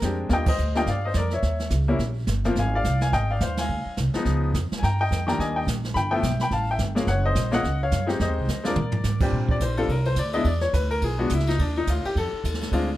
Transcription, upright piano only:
0.00 0.30 G#3 medium
0.00 0.31 C4 medium
0.00 0.29 D4 soft
0.00 0.16 A#4 medium
0.04 0.32 G4 medium
0.29 0.45 G3 medium
0.29 0.45 A#3 medium
0.29 0.45 D4 medium
0.29 0.45 F4 medium
0.33 0.47 D#5 medium
0.33 0.47 G5 medium
0.48 0.74 C5 medium
0.48 0.77 D#5 medium
0.75 0.86 G3 medium
0.75 0.86 A#3 medium
0.75 0.86 D4 medium
0.75 0.86 F4 medium
0.75 0.88 D#5 medium
0.75 0.87 G5 medium
0.88 1.04 D5 medium
0.88 1.05 F5 medium
1.05 1.16 C5 medium
1.05 1.16 D#5 medium
1.17 1.33 A#4 medium
1.17 1.31 D5 medium
1.33 1.70 C#5 medium
1.33 1.69 E5 medium
1.88 1.99 G3 medium
1.88 1.99 A#3 medium
1.88 1.99 C#4 medium
1.88 1.99 E4 medium
2.45 2.55 F3 medium
2.45 2.56 A#3 medium
2.45 2.56 C4 medium
2.45 2.56 F4 medium
2.59 2.73 F5 medium
2.59 2.74 G#5 loud
2.75 3.00 D5 medium
2.75 3.01 F5 loud
3.02 3.13 F5 medium
3.02 3.13 G#5 loud
3.13 3.29 D#5 medium
3.13 3.30 G5 loud
3.31 3.41 D5 medium
3.31 3.40 F5 medium
3.41 3.58 C5 medium
3.41 3.57 F5 medium
3.58 3.96 F5 medium
3.58 3.95 G#5 medium
4.14 4.51 F3 medium
4.14 4.52 G#3 medium
4.14 4.52 B3 medium
4.14 4.52 D#4 medium
4.79 4.82 G#5 medium
4.83 4.99 G5 medium
4.83 5.00 A#5 medium
5.01 5.26 D#5 medium
5.01 5.26 G5 loud
5.27 5.64 D#3 medium
5.27 5.65 G3 medium
5.27 5.65 A#3 medium
5.27 5.65 D4 medium
5.27 5.38 G5 medium
5.27 5.39 A#5 loud
5.40 5.55 D#5 medium
5.40 5.56 G#5 medium
5.56 5.67 D#5 medium
5.56 5.66 G5 medium
5.94 6.10 G5 medium
5.94 6.12 B5 loud
6.11 6.22 F3 medium
6.11 6.22 A3 medium
6.11 6.22 B3 medium
6.11 6.22 E4 medium
6.11 6.38 E5 medium
6.11 6.40 G5 loud
6.41 6.52 G5 medium
6.41 6.51 B5 medium
6.52 6.68 F5 medium
6.52 6.67 A5 medium
6.71 6.80 E5 medium
6.71 6.80 G5 medium
6.95 7.06 G#3 medium
6.95 7.06 A#3 medium
6.95 7.07 C#4 medium
6.95 7.06 F4 medium
7.08 7.24 C#5 medium
7.08 7.23 F#5 loud
7.25 7.51 C5 medium
7.25 7.53 D#5 medium
7.51 7.62 G#3 medium
7.51 7.62 A#3 medium
7.51 7.63 C#4 medium
7.51 7.63 F4 medium
7.51 7.80 D#5 medium
7.51 7.79 F#5 loud
7.83 8.08 C#5 medium
7.83 8.08 F5 loud
8.06 8.45 G#3 medium
8.06 8.45 C4 medium
8.06 8.45 D#4 medium
8.06 8.46 G4 medium
8.22 8.63 C5 medium
8.22 8.63 D#5 medium
8.63 8.75 G#3 medium
8.63 8.75 C4 medium
8.63 8.75 D4 medium
8.63 8.75 F4 medium
8.63 9.19 A#4 medium
8.63 9.18 D5 medium
9.21 9.59 A#2 medium
9.21 9.59 G3 medium
9.21 9.59 C4 medium
9.21 9.59 D4 medium
9.21 9.60 G4 medium
9.51 9.62 D5 medium
9.62 9.78 C5 medium
9.77 9.88 G3 medium
9.77 9.88 C4 medium
9.77 9.88 D4 medium
9.77 9.88 F4 medium
9.77 9.89 A4 medium
9.91 10.06 A#4 medium
10.06 10.17 C5 medium
10.19 10.34 D5 medium
10.33 10.44 G#3 medium
10.33 10.44 B3 medium
10.33 10.45 D4 medium
10.33 10.45 E4 medium
10.33 10.45 D#5 loud
10.47 10.63 D5 medium
10.61 10.73 C#5 loud
10.74 10.90 B4 medium
10.91 11.02 A#4 medium
11.04 11.19 G#4 medium
11.18 11.29 G#3 medium
11.18 11.29 B3 medium
11.18 11.30 D4 medium
11.18 11.30 F#4 medium
11.33 11.48 E4 medium
11.48 11.59 D#4 medium
11.61 11.76 D4 medium
11.77 11.88 D#4 medium
11.90 12.04 F4 medium
12.06 12.16 G4 medium
12.18 12.69 A4 medium
12.73 12.87 G#3 medium
12.73 12.87 C4 medium
12.73 12.87 D4 medium
12.73 12.88 F4 medium

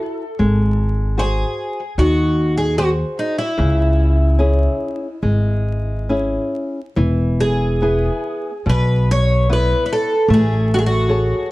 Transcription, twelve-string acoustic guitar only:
1.19 1.98 G#4 medium
1.99 2.57 F#4 medium
2.57 2.76 G#4 medium
2.78 2.89 F#4 medium
3.19 3.38 D#4 medium
3.38 6.06 E4 medium
7.40 8.71 G#4 medium
8.70 9.11 B4 medium
9.11 9.48 C#5 loud
9.53 9.85 B4 medium
9.86 9.91 B4 medium
9.93 10.28 A4 medium
10.34 10.68 G#4 medium
10.74 10.78 F#4 medium
10.79 10.84 G#4 medium
10.86 11.50 F#4 medium

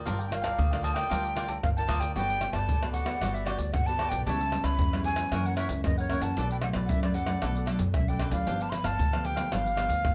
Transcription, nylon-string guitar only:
0.00 0.28 D4 medium
0.00 0.28 F4 medium
0.00 0.28 A#4 medium
0.06 0.56 G3 medium
0.31 0.67 D4 medium
0.31 0.67 F4 medium
0.31 0.67 A#4 medium
0.58 1.08 D3 medium
0.72 1.07 D4 medium
0.72 1.07 F4 medium
0.72 1.08 A#4 medium
1.11 1.61 G3 medium
1.11 1.60 D4 medium
1.11 1.60 F4 medium
1.11 1.60 A#4 medium
1.64 2.14 D3 medium
1.64 1.72 D4 medium
1.64 1.72 F4 medium
1.64 1.72 A#4 medium
1.77 1.86 D4 medium
1.77 1.86 F4 medium
1.77 1.87 A#4 medium
1.88 2.14 D4 medium
1.88 2.14 F4 medium
1.88 2.14 A#4 medium
2.16 2.66 G3 medium
2.16 2.38 B3 medium
2.16 2.39 F#4 medium
2.16 2.39 A4 medium
2.41 2.67 B3 medium
2.41 2.67 F#4 medium
2.41 2.67 A4 medium
2.68 3.19 D3 medium
2.82 3.04 B3 medium
2.82 3.04 F#4 medium
2.82 3.05 A4 medium
3.06 3.16 B3 medium
3.06 3.16 F#4 medium
3.06 3.16 A4 medium
3.21 3.71 G3 medium
3.21 3.44 B3 medium
3.21 3.44 F#4 medium
3.21 3.44 A4 medium
3.47 3.83 B3 medium
3.47 3.83 F#4 medium
3.47 3.83 A4 medium
3.74 4.24 D3 medium
3.88 4.25 B3 medium
3.88 4.25 F#4 medium
3.88 4.25 A4 medium
4.27 4.77 C#3 medium
4.27 4.42 G3 medium
4.27 4.43 B3 medium
4.27 4.43 E4 medium
4.52 4.78 G3 medium
4.52 4.78 B3 medium
4.52 4.78 E4 medium
4.79 5.29 C#3 medium
4.93 5.28 G3 medium
4.93 5.28 B3 medium
4.93 5.29 E4 medium
5.32 5.82 F#2 medium
5.32 5.66 E3 medium
5.32 5.66 A#3 medium
5.32 5.66 C#4 medium
5.84 6.34 C#3 medium
5.84 6.06 E3 medium
5.84 6.07 A#3 medium
5.84 6.07 C#4 medium
6.10 6.34 E3 medium
6.10 6.35 A#3 medium
6.10 6.35 C#4 medium
6.37 6.87 B2 medium
6.37 6.60 F#3 medium
6.37 6.60 A3 medium
6.37 6.60 D4 medium
6.63 6.98 F#3 medium
6.63 6.99 A3 medium
6.63 6.99 D4 medium
6.90 7.40 F#2 medium
7.04 7.25 F#3 medium
7.04 7.26 A3 medium
7.04 7.26 D4 medium
7.27 7.37 F#3 medium
7.27 7.37 A3 medium
7.27 7.37 D4 medium
7.43 7.92 B2 medium
7.43 7.65 F#3 medium
7.43 7.65 A3 medium
7.43 7.65 D4 medium
7.68 7.93 F#3 medium
7.68 7.93 A3 medium
7.68 7.93 D4 medium
7.95 8.45 F#2 medium
8.09 8.46 F#3 medium
8.09 8.46 A3 medium
8.09 8.46 D4 medium
8.48 8.98 G2 medium
8.48 8.70 F3 medium
8.48 8.70 B3 medium
8.48 8.70 D4 medium
8.73 8.98 F3 medium
8.73 8.98 B3 medium
8.73 8.98 D4 medium
9.01 9.50 D3 medium
9.14 9.35 F3 medium
9.14 9.36 B3 medium
9.14 9.36 D4 medium
9.37 9.47 F3 medium
9.37 9.47 B3 medium
9.37 9.48 D4 medium
9.52 10.02 G2 medium
9.52 9.68 F3 medium
9.52 9.68 B3 medium
9.52 9.68 D4 medium
9.77 10.13 F3 medium
9.77 10.13 B3 medium
9.77 10.14 D4 medium
10.05 10.15 D3 medium

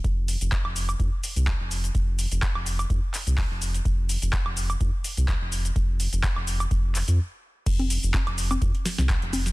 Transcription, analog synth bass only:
0.04 0.36 F1 loud
0.41 0.49 F1 medium
0.65 0.95 F1 medium
1.00 1.09 F2 medium
1.36 1.53 C2 medium
1.60 1.90 F1 medium
1.95 2.26 F1 loud
2.32 2.40 F1 medium
2.55 2.86 F1 medium
2.90 3.00 F2 medium
3.27 3.44 C2 medium
3.51 3.81 F1 medium
3.85 4.17 F1 loud
4.22 4.30 F1 medium
4.46 4.76 F1 medium
4.81 4.90 F2 medium
5.17 5.35 C2 medium
5.41 5.71 F1 medium
5.76 6.07 F1 loud
6.13 6.21 F1 medium
6.36 6.67 F1 medium
6.71 7.02 F1 loud
7.08 7.19 F2 medium
7.66 7.98 F1 loud
8.03 8.11 F1 medium
8.27 8.57 F1 medium
8.62 8.71 F2 medium
8.98 9.15 C2 medium
9.22 9.52 F1 loud

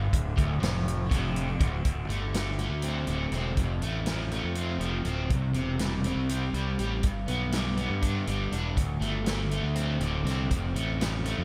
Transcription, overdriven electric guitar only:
0.00 0.12 G2 loud
0.14 0.33 D2 medium
0.36 0.60 D2 loud
0.62 1.09 F2 loud
1.10 1.59 F2 loud
1.60 1.84 D2 loud
1.85 3.08 D2 medium
2.09 2.58 A3 medium
2.34 3.07 D3 medium
2.59 3.58 A3 medium
2.83 3.32 C4 medium
3.08 3.57 D3 medium
3.32 4.57 C4 medium
3.58 4.81 F2 medium
3.83 4.31 A3 medium
4.07 4.79 F3 medium
4.32 5.31 A3 medium
4.57 5.04 C4 medium
4.80 5.30 F3 medium
5.05 5.30 C4 medium
5.30 6.54 C3 medium
5.55 6.05 C4 medium
5.80 6.53 G3 medium
6.06 7.04 C4 medium
6.30 6.79 G4 medium
6.54 7.04 G3 medium
6.80 7.04 G4 medium
7.04 8.28 G2 medium
7.28 7.76 B3 medium
7.53 8.27 G3 medium
7.77 8.77 B3 medium
8.02 8.51 D4 medium
8.28 8.77 G3 medium
8.52 8.77 D4 medium
8.76 10.01 D2 medium
9.01 9.50 A3 medium
9.26 10.00 D3 medium
9.51 10.50 A3 medium
9.75 10.25 C4 medium
10.01 10.51 D3 medium
10.25 11.44 C4 medium
10.50 11.44 F2 medium
10.76 11.24 A3 medium
11.00 11.44 F3 medium
11.25 11.44 A3 medium

